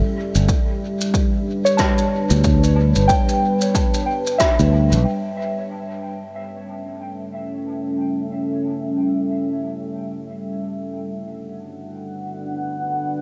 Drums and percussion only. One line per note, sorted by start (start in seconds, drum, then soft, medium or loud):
0.35 shaker medium
0.49 kick loud
0.49 shaker medium
1.01 shaker soft
1.14 kick medium
1.14 shaker medium
1.66 shaker soft
1.79 kick medium
1.79 cross-stick medium
1.79 shaker medium
1.98 shaker soft
2.30 shaker medium
2.44 kick loud
2.44 shaker medium
2.64 shaker soft
2.96 shaker medium
3.09 kick loud
3.09 shaker medium
3.29 shaker soft
3.61 shaker medium
3.75 kick loud
3.75 shaker medium
3.94 shaker medium
4.27 shaker medium
4.40 kick loud
4.40 cross-stick medium
4.40 shaker medium
4.59 shaker soft
4.92 shaker medium